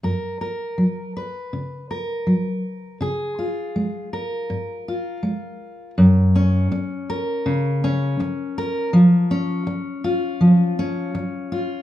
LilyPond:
\new Staff \with { instrumentName = "Steel-string acoustic guitar" } { \time 4/4 \key fis \major \tempo 4 = 81 << { ais'8 ais'4 b'4 ais'4. | gis'8 eis'4 ais'4 eis'4. | r8 cis'4 ais'4 cis'4 ais'8 | r8 cis'4 eis'4 cis'4 eis'8 | } \\ { fis,4 fis4 cis4 fis4 | cis4 gis4 gis,4 gis4 | fis,4 r4 cis4 r4 | eis4 r4 eis4 r4 | } >> }